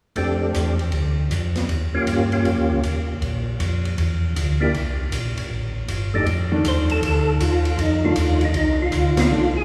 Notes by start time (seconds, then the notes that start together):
0.16 F2 A3 C4 D4 G4, kick, ride
0.53 E2, kick, hi-hat pedal, ride
0.79 ride
0.92 D2, kick, ride
1.31 F2, kick, hi-hat pedal, ride
1.56 snare, ride
1.68 D#2, kick, ride
1.93 D#2 A#3 C#4 F4 G4
2.07 G2, kick, hi-hat pedal, ride
2.32 A#3 C#4 F4 G4, ride
2.45 F2, kick, ride
2.57 D#2
2.69 C#2
2.83 D#2, kick, hi-hat pedal, ride
3.07 D#2
3.22 A#1, kick, ride
3.59 F2, kick, hi-hat pedal, ride
3.85 ride
3.98 E2, kick, ride
4.36 D2, kick, hi-hat pedal, ride
4.60 A#3 D4 E4 G4
4.74 C2, kick, ride
5.12 A#1, kick, hi-hat pedal, ride
5.36 A#1, ride
5.50 A1, kick
5.88 G1, kick, hi-hat pedal, ride
6.14 F2 A3 D4 D#4 G4
6.26 F2, kick, ride
6.52 D#3 A3 D4
6.64 D#2 C5, kick, hi-hat pedal, ride
6.90 A4, ride
7.02 D2 A4, kick, ride
7.40 D#2 F4, kick, hi-hat pedal, ride
7.65 ride
7.78 F2 D#4, kick, ride
8.05 D#3 A3 D4 F4
8.16 D#2, kick, hi-hat pedal, ride
8.41 D#4, ride
8.54 C2 D#4, kick, ride
8.82 F4
8.92 D2, kick, hi-hat pedal, ride
9.17 F4, snare, ride
9.29 C2 D#3 A3 D4
9.57 G#4